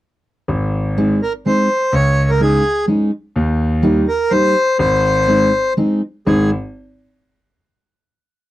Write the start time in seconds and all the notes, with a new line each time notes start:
0.48 G#1
0.98 G#3 C4 D#4
1.23 A#4
1.46 G#3 C4 D#4 C5
1.92 C#2 C#5
2.30 A#4
2.40 G#3 C#4 D#4 G#4
2.87 G#3 C#4 D#4
3.36 D#2
3.83 G3 A#3 D#4
4.08 A#4
4.31 G3 A#3 D#4 C5
4.79 G#1 C5
5.28 G#3 C4 D#4
5.77 G#3 C4 D#4
6.27 G#1 G#3 C4 D#4 G#4